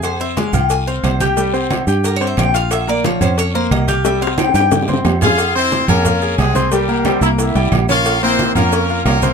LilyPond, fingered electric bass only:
\new Staff \with { instrumentName = "Fingered electric bass" } { \clef bass \time 4/4 \key f \minor \tempo 4 = 179 f,4. c,4. c,4~ | c,4. g,4. bes,,4~ | bes,,4. f,4. c,4~ | c,4. g,4. f,4~ |
f,4. f,4. c,4~ | c,4. c,4 c,8 bes,,4~ | bes,,4. f,4. c,4 | }